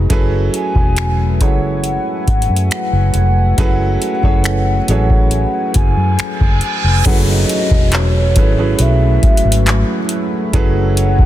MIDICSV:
0, 0, Header, 1, 10, 480
1, 0, Start_track
1, 0, Key_signature, 3, "minor"
1, 0, Tempo, 869565
1, 55, Time_signature, 4, 2, 24, 8
1, 6213, End_track
2, 0, Start_track
2, 0, Title_t, "Soft synth lead"
2, 0, Program_c, 0, 80
2, 299, Note_on_c, 0, 80, 121
2, 755, Note_off_c, 0, 80, 0
2, 779, Note_on_c, 0, 78, 125
2, 3155, Note_off_c, 0, 78, 0
2, 3180, Note_on_c, 0, 80, 121
2, 3635, Note_off_c, 0, 80, 0
2, 3662, Note_on_c, 0, 80, 110
2, 3882, Note_off_c, 0, 80, 0
2, 3902, Note_on_c, 0, 78, 119
2, 3954, Note_off_c, 0, 78, 0
2, 4025, Note_on_c, 0, 75, 103
2, 4385, Note_on_c, 0, 73, 95
2, 4393, Note_off_c, 0, 75, 0
2, 4500, Note_off_c, 0, 73, 0
2, 4505, Note_on_c, 0, 73, 98
2, 4864, Note_on_c, 0, 76, 106
2, 4872, Note_off_c, 0, 73, 0
2, 5579, Note_off_c, 0, 76, 0
2, 5822, Note_on_c, 0, 78, 113
2, 6213, Note_off_c, 0, 78, 0
2, 6213, End_track
3, 0, Start_track
3, 0, Title_t, "Celesta"
3, 0, Program_c, 1, 8
3, 3895, Note_on_c, 1, 73, 55
3, 5008, Note_off_c, 1, 73, 0
3, 6213, End_track
4, 0, Start_track
4, 0, Title_t, "Grand piano"
4, 0, Program_c, 2, 0
4, 0, Control_c, 2, 64, 127
4, 54, Note_on_c, 2, 54, 111
4, 57, Note_on_c, 2, 61, 97
4, 59, Note_on_c, 2, 64, 100
4, 60, Note_on_c, 2, 68, 102
4, 62, Control_c, 2, 64, 0
4, 62, Note_on_c, 2, 69, 104
4, 65, Note_on_c, 2, 71, 119
4, 142, Control_c, 2, 64, 127
4, 635, Note_off_c, 2, 54, 0
4, 637, Note_off_c, 2, 61, 0
4, 638, Note_off_c, 2, 64, 0
4, 639, Note_off_c, 2, 68, 0
4, 639, Note_off_c, 2, 69, 0
4, 641, Note_off_c, 2, 71, 0
4, 776, Note_on_c, 2, 54, 69
4, 778, Note_on_c, 2, 61, 66
4, 779, Note_on_c, 2, 64, 68
4, 782, Note_on_c, 2, 68, 65
4, 784, Note_on_c, 2, 69, 68
4, 786, Note_on_c, 2, 73, 76
4, 1550, Note_off_c, 2, 54, 0
4, 1551, Note_off_c, 2, 61, 0
4, 1552, Note_off_c, 2, 64, 0
4, 1553, Note_off_c, 2, 68, 0
4, 1554, Note_off_c, 2, 69, 0
4, 1555, Note_off_c, 2, 73, 0
4, 1975, Note_on_c, 2, 54, 115
4, 1978, Note_on_c, 2, 61, 98
4, 1980, Note_on_c, 2, 64, 100
4, 1982, Note_on_c, 2, 68, 97
4, 1984, Note_on_c, 2, 69, 99
4, 1986, Note_on_c, 2, 71, 125
4, 2265, Note_off_c, 2, 54, 0
4, 2267, Note_off_c, 2, 61, 0
4, 2268, Note_off_c, 2, 64, 0
4, 2269, Note_off_c, 2, 68, 0
4, 2270, Note_off_c, 2, 69, 0
4, 2271, Note_off_c, 2, 71, 0
4, 2335, Note_on_c, 2, 54, 85
4, 2336, Note_on_c, 2, 61, 80
4, 2339, Note_on_c, 2, 64, 81
4, 2341, Note_on_c, 2, 68, 80
4, 2343, Note_on_c, 2, 69, 77
4, 2345, Note_on_c, 2, 73, 90
4, 2625, Note_off_c, 2, 54, 0
4, 2626, Note_off_c, 2, 61, 0
4, 2628, Note_off_c, 2, 64, 0
4, 2628, Note_off_c, 2, 68, 0
4, 2629, Note_off_c, 2, 69, 0
4, 2631, Note_off_c, 2, 73, 0
4, 2698, Note_on_c, 2, 54, 83
4, 2700, Note_on_c, 2, 61, 78
4, 2702, Note_on_c, 2, 64, 76
4, 2704, Note_on_c, 2, 68, 76
4, 2706, Note_on_c, 2, 69, 78
4, 2709, Note_on_c, 2, 73, 94
4, 3471, Note_off_c, 2, 54, 0
4, 3472, Note_off_c, 2, 61, 0
4, 3473, Note_off_c, 2, 64, 0
4, 3474, Note_off_c, 2, 68, 0
4, 3475, Note_off_c, 2, 69, 0
4, 3477, Note_off_c, 2, 73, 0
4, 3897, Note_on_c, 2, 54, 102
4, 3899, Note_on_c, 2, 61, 92
4, 3900, Note_on_c, 2, 64, 90
4, 3902, Control_c, 2, 64, 0
4, 3903, Note_on_c, 2, 68, 88
4, 3906, Note_on_c, 2, 69, 91
4, 3906, Note_on_c, 2, 71, 102
4, 3989, Control_c, 2, 64, 127
4, 4477, Note_off_c, 2, 54, 0
4, 4478, Note_off_c, 2, 61, 0
4, 4478, Note_off_c, 2, 64, 0
4, 4480, Note_off_c, 2, 68, 0
4, 4481, Note_off_c, 2, 69, 0
4, 4481, Note_off_c, 2, 71, 0
4, 4616, Note_on_c, 2, 54, 68
4, 4619, Note_on_c, 2, 61, 64
4, 4621, Note_on_c, 2, 64, 65
4, 4623, Note_on_c, 2, 68, 63
4, 4625, Note_on_c, 2, 69, 65
4, 4628, Note_on_c, 2, 71, 72
4, 4712, Note_off_c, 2, 54, 0
4, 4714, Note_off_c, 2, 61, 0
4, 4715, Note_off_c, 2, 64, 0
4, 4716, Note_off_c, 2, 68, 0
4, 4716, Note_off_c, 2, 69, 0
4, 4718, Note_off_c, 2, 71, 0
4, 4736, Note_on_c, 2, 54, 71
4, 4738, Note_on_c, 2, 61, 69
4, 4741, Note_on_c, 2, 64, 69
4, 4741, Note_on_c, 2, 68, 66
4, 4744, Note_on_c, 2, 69, 70
4, 4746, Note_on_c, 2, 71, 82
4, 5510, Note_off_c, 2, 54, 0
4, 5511, Note_off_c, 2, 61, 0
4, 5512, Note_off_c, 2, 64, 0
4, 5513, Note_off_c, 2, 68, 0
4, 5514, Note_off_c, 2, 69, 0
4, 5515, Note_off_c, 2, 71, 0
4, 5815, Note_on_c, 2, 54, 100
4, 5817, Note_on_c, 2, 61, 87
4, 5819, Note_on_c, 2, 64, 88
4, 5822, Note_on_c, 2, 68, 90
4, 5823, Note_on_c, 2, 69, 90
4, 5825, Note_on_c, 2, 71, 109
4, 6213, Note_off_c, 2, 54, 0
4, 6213, Note_off_c, 2, 61, 0
4, 6213, Note_off_c, 2, 64, 0
4, 6213, Note_off_c, 2, 68, 0
4, 6213, Note_off_c, 2, 69, 0
4, 6213, Note_off_c, 2, 71, 0
4, 6213, End_track
5, 0, Start_track
5, 0, Title_t, "Analog synth pad"
5, 0, Program_c, 3, 89
5, 51, Note_on_c, 3, 57, 67
5, 51, Note_on_c, 3, 80, 67
5, 52, Note_on_c, 3, 54, 73
5, 3871, Note_off_c, 3, 54, 0
5, 3871, Note_off_c, 3, 57, 0
5, 3871, Note_off_c, 3, 80, 0
5, 3892, Note_on_c, 3, 66, 70
5, 3893, Note_on_c, 3, 64, 70
5, 3894, Note_on_c, 3, 54, 78
5, 3894, Note_on_c, 3, 71, 83
5, 5795, Note_off_c, 3, 71, 0
5, 5815, Note_on_c, 3, 73, 86
5, 6213, Note_off_c, 3, 54, 0
5, 6213, Note_off_c, 3, 64, 0
5, 6213, Note_off_c, 3, 66, 0
5, 6213, Note_off_c, 3, 73, 0
5, 6213, End_track
6, 0, Start_track
6, 0, Title_t, "Fingered electric bass"
6, 0, Program_c, 4, 33
6, 56, Note_on_c, 4, 30, 96
6, 261, Note_off_c, 4, 30, 0
6, 416, Note_on_c, 4, 28, 85
6, 777, Note_off_c, 4, 28, 0
6, 777, Note_on_c, 4, 30, 99
6, 1085, Note_off_c, 4, 30, 0
6, 1256, Note_on_c, 4, 32, 86
6, 1358, Note_off_c, 4, 32, 0
6, 1375, Note_on_c, 4, 42, 89
6, 1478, Note_off_c, 4, 42, 0
6, 1616, Note_on_c, 4, 30, 86
6, 1718, Note_off_c, 4, 30, 0
6, 1736, Note_on_c, 4, 29, 93
6, 1941, Note_off_c, 4, 29, 0
6, 1976, Note_on_c, 4, 30, 107
6, 2181, Note_off_c, 4, 30, 0
6, 2335, Note_on_c, 4, 30, 78
6, 2644, Note_off_c, 4, 30, 0
6, 2696, Note_on_c, 4, 33, 102
6, 3004, Note_off_c, 4, 33, 0
6, 3176, Note_on_c, 4, 30, 91
6, 3278, Note_off_c, 4, 30, 0
6, 3294, Note_on_c, 4, 42, 91
6, 3397, Note_off_c, 4, 42, 0
6, 3537, Note_on_c, 4, 30, 91
6, 3639, Note_off_c, 4, 30, 0
6, 3775, Note_on_c, 4, 29, 76
6, 3878, Note_off_c, 4, 29, 0
6, 4256, Note_on_c, 4, 28, 91
6, 4615, Note_off_c, 4, 28, 0
6, 4615, Note_on_c, 4, 32, 92
6, 4821, Note_off_c, 4, 32, 0
6, 4854, Note_on_c, 4, 35, 93
6, 5060, Note_off_c, 4, 35, 0
6, 5216, Note_on_c, 4, 32, 88
6, 5421, Note_off_c, 4, 32, 0
6, 5815, Note_on_c, 4, 30, 104
6, 6213, Note_off_c, 4, 30, 0
6, 6213, End_track
7, 0, Start_track
7, 0, Title_t, "Downlifter"
7, 0, Program_c, 5, 103
7, 3895, Note_on_c, 5, 60, 78
7, 6213, Note_off_c, 5, 60, 0
7, 6213, End_track
8, 0, Start_track
8, 0, Title_t, "Reverse cymbal"
8, 0, Program_c, 6, 119
8, 2935, Note_on_c, 6, 60, 75
8, 3895, Note_off_c, 6, 60, 0
8, 6213, End_track
9, 0, Start_track
9, 0, Title_t, "Muted fingered electric bass strokes"
9, 3418, Note_on_c, 9, 29, 43
9, 3473, Note_off_c, 9, 29, 0
9, 6213, End_track
10, 0, Start_track
10, 0, Title_t, "Drums"
10, 55, Note_on_c, 9, 36, 112
10, 55, Note_on_c, 9, 42, 63
10, 110, Note_off_c, 9, 36, 0
10, 110, Note_off_c, 9, 42, 0
10, 297, Note_on_c, 9, 42, 58
10, 352, Note_off_c, 9, 42, 0
10, 416, Note_on_c, 9, 36, 80
10, 471, Note_off_c, 9, 36, 0
10, 533, Note_on_c, 9, 42, 66
10, 541, Note_on_c, 9, 26, 117
10, 588, Note_off_c, 9, 42, 0
10, 596, Note_off_c, 9, 26, 0
10, 776, Note_on_c, 9, 36, 94
10, 776, Note_on_c, 9, 42, 68
10, 831, Note_off_c, 9, 36, 0
10, 831, Note_off_c, 9, 42, 0
10, 1014, Note_on_c, 9, 42, 67
10, 1069, Note_off_c, 9, 42, 0
10, 1255, Note_on_c, 9, 36, 91
10, 1256, Note_on_c, 9, 42, 41
10, 1310, Note_off_c, 9, 36, 0
10, 1311, Note_off_c, 9, 42, 0
10, 1336, Note_on_c, 9, 42, 54
10, 1391, Note_off_c, 9, 42, 0
10, 1416, Note_on_c, 9, 42, 68
10, 1471, Note_off_c, 9, 42, 0
10, 1496, Note_on_c, 9, 42, 57
10, 1501, Note_on_c, 9, 26, 111
10, 1551, Note_off_c, 9, 42, 0
10, 1556, Note_off_c, 9, 26, 0
10, 1731, Note_on_c, 9, 42, 60
10, 1787, Note_off_c, 9, 42, 0
10, 1975, Note_on_c, 9, 36, 112
10, 1975, Note_on_c, 9, 42, 68
10, 2030, Note_off_c, 9, 36, 0
10, 2031, Note_off_c, 9, 42, 0
10, 2217, Note_on_c, 9, 42, 59
10, 2272, Note_off_c, 9, 42, 0
10, 2336, Note_on_c, 9, 36, 84
10, 2391, Note_off_c, 9, 36, 0
10, 2451, Note_on_c, 9, 42, 63
10, 2459, Note_on_c, 9, 26, 105
10, 2506, Note_off_c, 9, 42, 0
10, 2514, Note_off_c, 9, 26, 0
10, 2695, Note_on_c, 9, 42, 67
10, 2750, Note_off_c, 9, 42, 0
10, 2815, Note_on_c, 9, 36, 87
10, 2870, Note_off_c, 9, 36, 0
10, 2931, Note_on_c, 9, 42, 63
10, 2986, Note_off_c, 9, 42, 0
10, 3170, Note_on_c, 9, 42, 65
10, 3175, Note_on_c, 9, 36, 89
10, 3225, Note_off_c, 9, 42, 0
10, 3230, Note_off_c, 9, 36, 0
10, 3415, Note_on_c, 9, 42, 54
10, 3420, Note_on_c, 9, 26, 106
10, 3471, Note_off_c, 9, 42, 0
10, 3476, Note_off_c, 9, 26, 0
10, 3536, Note_on_c, 9, 36, 90
10, 3591, Note_off_c, 9, 36, 0
10, 3649, Note_on_c, 9, 42, 57
10, 3704, Note_off_c, 9, 42, 0
10, 3894, Note_on_c, 9, 42, 70
10, 3894, Note_on_c, 9, 49, 97
10, 3895, Note_on_c, 9, 36, 121
10, 3949, Note_off_c, 9, 42, 0
10, 3949, Note_off_c, 9, 49, 0
10, 3950, Note_off_c, 9, 36, 0
10, 4137, Note_on_c, 9, 42, 64
10, 4192, Note_off_c, 9, 42, 0
10, 4256, Note_on_c, 9, 36, 90
10, 4311, Note_off_c, 9, 36, 0
10, 4370, Note_on_c, 9, 42, 73
10, 4378, Note_on_c, 9, 39, 121
10, 4425, Note_off_c, 9, 42, 0
10, 4434, Note_off_c, 9, 39, 0
10, 4613, Note_on_c, 9, 42, 69
10, 4615, Note_on_c, 9, 36, 100
10, 4668, Note_off_c, 9, 42, 0
10, 4670, Note_off_c, 9, 36, 0
10, 4850, Note_on_c, 9, 42, 73
10, 4905, Note_off_c, 9, 42, 0
10, 5094, Note_on_c, 9, 42, 43
10, 5095, Note_on_c, 9, 36, 98
10, 5150, Note_off_c, 9, 36, 0
10, 5150, Note_off_c, 9, 42, 0
10, 5174, Note_on_c, 9, 42, 63
10, 5230, Note_off_c, 9, 42, 0
10, 5254, Note_on_c, 9, 42, 74
10, 5310, Note_off_c, 9, 42, 0
10, 5335, Note_on_c, 9, 42, 59
10, 5340, Note_on_c, 9, 39, 113
10, 5390, Note_off_c, 9, 42, 0
10, 5395, Note_off_c, 9, 39, 0
10, 5569, Note_on_c, 9, 42, 61
10, 5624, Note_off_c, 9, 42, 0
10, 5815, Note_on_c, 9, 36, 123
10, 5815, Note_on_c, 9, 42, 72
10, 5870, Note_off_c, 9, 36, 0
10, 5870, Note_off_c, 9, 42, 0
10, 6056, Note_on_c, 9, 42, 65
10, 6111, Note_off_c, 9, 42, 0
10, 6175, Note_on_c, 9, 36, 86
10, 6213, Note_off_c, 9, 36, 0
10, 6213, End_track
0, 0, End_of_file